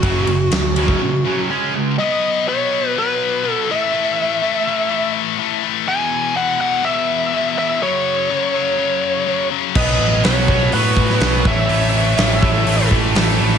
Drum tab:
CC |----------------|----------------|----------------|----------------|
RD |x-x-x-x---------|----------------|----------------|----------------|
HH |----------------|----------------|----------------|----------------|
SD |----o-----------|----------------|----------------|----------------|
BD |o------o--------|----------------|----------------|----------------|

CC |----------------|x---------------|----------------|
RD |----------------|----------------|----------------|
HH |----------------|----o---o---o---|o---o---o---o---|
SD |----------------|----o------oo---|----o-------o---|
BD |----------------|o-----o---o---o-|------o---o-----|